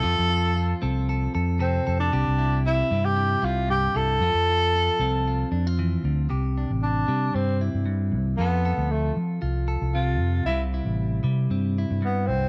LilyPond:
<<
  \new Staff \with { instrumentName = "Clean electric guitar" } { \time 4/4 \key c \major \tempo 4 = 115 << { f'8 f'8 f'8 a'8 a'8 a'8 a'8 a'8 | g'8 e'8 c'8 c'8 e'8 e'8 r8 e'8 | f'8 f'8 f'8 f'8 f'8 d'16 f'4~ f'16 | g'8 d'16 r4 r16 c'8 e'4. |
<f' a'>8 a'4. f'8 a'4. | <g c'>8 e'4. c'8 e'4. | } \\ { f4. c'4. c4 | c4. g4. g,4 | f4. c'4. e8 d8 | c4. g4. g,4 |
f2. c4 | c4. g4. g,4 | } >> }
  \new Staff \with { instrumentName = "Tenor saxophone" } { \time 4/4 \key c \major a'4. r4. c'8. d'16~ | d'4 e'8. g'8. f'8 g'8 a'8~ | a'2. r4 | r4 d'4 c'8 r4. |
b4 a8 r4. f'4 | e'8 r2 r8 b8 c'8 | }
  \new Staff \with { instrumentName = "Fingered electric bass" } { \clef bass \time 4/4 \key c \major f,16 f,4~ f,16 c,4 f,4 f,8 | c,16 c,4~ c,16 g,4 c,4 c,8 | f,16 f,4~ f,16 c,4 f,4 d,8 | c,8. a,,8. c8 g,8. g,8. c,8 |
f,8. d,8. f8 c,8. c,8. f,8 | c,8. a,,8. c8 g,8. g,8. c,8 | }
>>